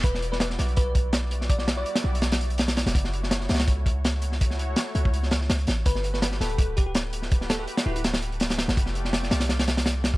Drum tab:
HH |x---x---x---x-x-x---x---x---x---|x---x---x-x---x-x-x-x-x-x-x-x-x-|x---x---x---xxx-x---x---x---x---|x---x---x---x---x---x---x-x-x---|
SD |--o---o-o-o-o-----------o-----o-|--o-o-----o-----o-o-----o-o-o-o-|--o---o-o-o-ooo---------o-----o-|--o-----o---------o-o-o-o---o---|
BD |o---------------o---o-----------|o-------------------------------|o---------------o---o-----------|o-------------o-----------------|

HH |x---x---x---x-x-x---x---x---x---|x---x---x-x---x-x-x-x-x-x-x-x-x-|x---x---x---x-x-x-x-x-x-x---x---|
SD |--o---o-o-o-o-----------o-----o-|--o-o-----o-----o-o-----o-o-o-o-|--o---o-o-o-o-o-o-o-o-o-o---o---|
BD |o---------------o---o-----------|o-------------------------------|o-----------------------------o-|